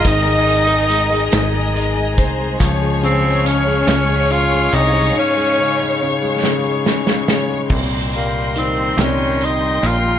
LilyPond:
<<
  \new Staff \with { instrumentName = "String section" } { \time 6/8 \key des \lydian \tempo 4. = 47 << { <bes' ees'' bes''>2. | <f'' des'''>2.~ | <f'' des'''>2. | <ees'' g'' c'''>2. | } \\ { aes'2.~ | aes'2.~ | aes'2. | bes'2. | } >> }
  \new Staff \with { instrumentName = "Violin section" } { \time 6/8 \key des \lydian ees''2~ ees''8 c''8 | des''2.~ | des''2~ des''8 des''8 | r2. | }
  \new Staff \with { instrumentName = "Tenor saxophone" } { \time 6/8 \key des \lydian ees'2 r4 | r8 c'8 des'4 f'8 ees'8 | des'4 r2 | r8 bes8 c'8 des'8 ees'8 f'8 | }
  \new Staff \with { instrumentName = "Grand piano" } { \clef bass \time 6/8 \key des \lydian <ees aes ees'>16 aes16 aes16 aes16 aes16 aes16 ees'16 aes16 aes16 aes16 aes16 aes16 | f16 aes16 des16 aes16 des'16 aes8 aes8 aes8 aes16 | aes,16 aes16 des16 aes16 des16 aes16 des16 aes16 des16 aes16 des16 aes16 | bes,8 g8 ees8 g4. | }
  \new Staff \with { instrumentName = "Analog synth bass" } { \clef bass \time 6/8 \key des \lydian aes,,4. aes,,4 c,8 | des,4. des,4 c,8 | r2. | c,4. c,4 bes,,8 | }
  \new DrumStaff \with { instrumentName = "Drums" } \drummode { \time 6/8 <hh bd>8 hh8 hh8 <hh sn>8 hh8 <hh bd>8 | <hh bd>8 hh8 hh8 <hh sn>8 hh8 hh8 | r4. sn8 sn16 sn16 sn8 | <cymc bd>8 hh8 hh8 <hh sn>8 hh8 hh8 | }
>>